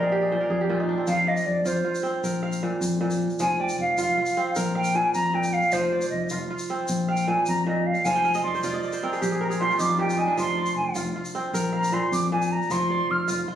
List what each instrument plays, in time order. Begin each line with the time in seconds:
Already playing: fingered electric bass A#1, kora C4 F4 A#4 C5 D5 D#5 F5, flute D5
0.03 kora G#4
0.12 kora G4
0.22 kora G#4
0.31 kora A#2 C5
0.40 kora A#4
0.50 fingered electric bass F2, kora G#4
0.61 kora G4
0.69 kora A#2 F4
0.80 kora D#4
0.89 kora D4
0.98 kora C4
1.07 fingered electric bass F2, kora F3, flute F5, shaker
1.27 kora D5, flute D#5
1.37 shaker
1.46 fingered electric bass F2, flute D5
1.65 fingered electric bass F2, kora F4, flute C5, shaker
1.85 kora F4
1.95 shaker
2.03 kora C4, shaker
2.23 fingered electric bass A#1, kora A#4, shaker
2.43 kora F5
2.52 shaker
2.63 kora A#2
2.81 fingered electric bass F2, shaker
3.01 kora A#2
3.10 shaker
3.30 shaker
3.39 fingered electric bass F1, kora F3, flute G#5, shaker
3.60 kora D5, flute G5
3.69 shaker
3.79 fingered electric bass F1, flute F5
3.98 fingered electric bass F1, kora F4, flute F5, shaker
4.17 kora F4
4.26 shaker
4.36 kora C4, shaker
4.55 fingered electric bass A#1, kora A#4, shaker
4.75 kora F5, flute G5
4.84 shaker
4.95 kora A#2, flute G#5
5.14 fingered electric bass F2, flute A#5, shaker
5.34 kora A#2, flute G5
5.43 shaker
5.53 flute F5
5.62 shaker
5.72 fingered electric bass F1, kora F3, flute C5, shaker
5.92 kora D5
6.01 shaker
6.10 fingered electric bass F1, flute D#5
6.29 fingered electric bass F1, kora F4, shaker
6.50 kora F4
6.59 shaker
6.70 kora C4
6.88 fingered electric bass A#1, shaker
7.08 kora F5, flute G5
7.17 shaker
7.27 kora A#2, flute G#5
7.46 fingered electric bass F2, flute A#5, shaker
7.66 kora A#2, flute D#5
7.86 flute F5
7.95 shaker
8.05 fingered electric bass F1, kora F3 F5, flute G#5, shaker
8.16 kora G5
8.25 kora F5, shaker
8.34 kora D#5, shaker
8.44 fingered electric bass F1, kora D5, flute C6
8.55 kora C5, shaker
8.63 fingered electric bass F1, kora F4 D5, shaker
8.74 kora D#5
8.83 kora D5, shaker
8.92 kora C5, shaker
9.03 kora C4 A#4
9.13 kora G#4, shaker
9.21 fingered electric bass A#1, kora G4, shaker
9.32 kora G#4
9.41 kora A#4, flute A#5
9.50 kora G#4, shaker
9.60 kora A#2 G4, flute C6
9.70 kora F4, shaker
9.78 fingered electric bass F2, kora D#4, flute D6, shaker
9.89 kora F4
9.99 kora A#2 G4, flute G5
10.08 kora F4, shaker
10.18 kora D#4, flute G#5
10.27 kora D4
10.37 fingered electric bass F1, kora F3, flute C6, shaker
10.57 kora D5
10.66 shaker
10.76 fingered electric bass F1, flute G#5
10.95 fingered electric bass F1, kora F4, shaker
11.16 kora F4
11.25 shaker
11.35 kora C4, shaker
11.53 fingered electric bass A#1, kora A#4, shaker
11.73 kora F5, flute A#5
11.84 shaker
11.92 kora A#2, flute C6
12.12 fingered electric bass F2, flute D6, shaker
12.32 kora A#2, flute G#5
12.42 shaker
12.52 flute A#5
12.62 shaker
12.70 fingered electric bass F1, kora F3, flute C6, shaker
12.90 kora D5
13.09 fingered electric bass F1, flute F6
13.28 fingered electric bass F1, kora F4, shaker
13.48 kora F4